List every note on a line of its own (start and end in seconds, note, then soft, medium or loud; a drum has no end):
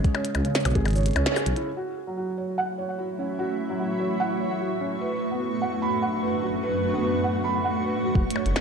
0.00 0.45 C#3 medium
0.00 1.68 G#3 medium
0.00 0.15 C#4 medium
0.00 0.75 G#4 medium
0.00 0.96 C#5 loud
0.04 kick loud
0.04 closed hi-hat medium
0.15 0.24 C#4 loud
0.15 closed hi-hat soft
0.15 percussion blips medium
0.25 closed hi-hat loud
0.35 0.42 C#2 medium
0.35 closed hi-hat soft
0.35 percussion blips medium
0.45 0.50 C#3 medium
0.45 closed hi-hat soft
0.55 0.64 C#4 medium
0.55 snare loud
0.55 closed hi-hat soft
0.55 cabasa medium
0.60 cabasa medium
0.65 0.72 B1 loud
0.65 closed hi-hat loud
0.65 cabasa medium
0.65 percussion blips medium
0.70 cabasa soft
0.75 1.10 G#1 medium
0.75 0.84 G#4 medium
0.75 kick medium
0.75 closed hi-hat medium
0.86 closed hi-hat soft
0.86 percussion blips medium
0.88 closed hi-hat soft
0.91 closed hi-hat soft
0.93 1.05 C#5 loud
0.93 closed hi-hat soft
0.96 closed hi-hat soft
0.96 cabasa medium
0.98 closed hi-hat soft
1.01 closed hi-hat soft
1.03 closed hi-hat soft
1.06 closed hi-hat medium
1.08 closed hi-hat soft
1.11 closed hi-hat soft
1.13 closed hi-hat soft
1.16 1.23 C#2 loud
1.16 1.26 C#4 loud
1.16 closed hi-hat medium
1.16 percussion blips medium
1.26 1.35 C#5 loud
1.26 snare loud
1.26 closed hi-hat medium
1.36 1.42 G#4 medium
1.36 closed hi-hat soft
1.36 cabasa medium
1.36 percussion blips medium
1.46 1.53 B1 loud
1.46 closed hi-hat loud
1.56 1.62 E4 medium
1.56 closed hi-hat medium
1.67 8.61 A3 medium
1.77 1.86 F#4 medium
1.77 8.61 F#4 medium
1.85 5.83 E4 medium
2.07 2.13 F#3 medium
2.07 6.21 E5 medium
2.17 2.26 F#4 medium
2.17 8.61 C#6 medium
2.38 2.47 C#5 medium
2.58 2.68 F#5 medium
2.78 2.87 C#5 medium
2.98 3.07 F#4 medium
3.19 3.28 C#4 medium
3.39 3.49 F#4 loud
3.69 3.75 F#3 medium
3.80 3.88 F#4 medium
4.00 4.09 C#5 medium
4.20 4.30 F#5 medium
4.40 4.49 C#5 medium
4.61 4.69 F#4 medium
4.81 4.90 C#4 medium
4.91 8.15 F#2 medium
5.01 8.15 D4 medium
5.01 5.11 B4 medium
5.31 5.37 B3 medium
5.39 8.61 B4 medium
5.39 5.51 B4 medium
5.62 5.71 F#5 medium
5.82 5.92 B5 medium
6.02 6.11 F#5 medium
6.23 6.32 B4 medium
6.43 6.52 F#4 medium
6.63 6.73 B4 loud
6.94 6.99 B3 medium
7.04 7.13 B4 medium
7.24 7.33 F#5 medium
7.44 7.54 B5 loud
7.65 7.74 F#5 medium
7.85 7.94 B4 medium
8.05 8.14 F#4 medium
8.15 8.22 F#1 loud
8.15 8.21 F#4 loud
8.15 kick loud
8.30 closed hi-hat loud
8.36 8.45 C#5 medium
8.36 percussion blips medium
8.46 8.52 F#1 medium
8.46 closed hi-hat medium
8.56 8.61 A4 medium
8.56 snare loud
8.56 percussion blips medium